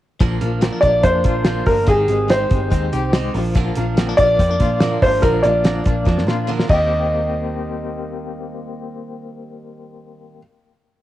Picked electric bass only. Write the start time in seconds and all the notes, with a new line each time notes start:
0.21 A#1
0.42 A#1
0.83 A#1
1.04 F2
1.25 A#1
1.66 G1
1.88 G#1
2.09 G#1
2.51 G1
2.72 D#2
2.93 C2
3.35 A#1
3.77 A#1
4.19 A#1
4.39 F2
4.61 A#2
5.02 G#1
5.23 A#1
5.45 A#1
5.87 A#1
6.07 F2
6.28 A#2
6.70 D#2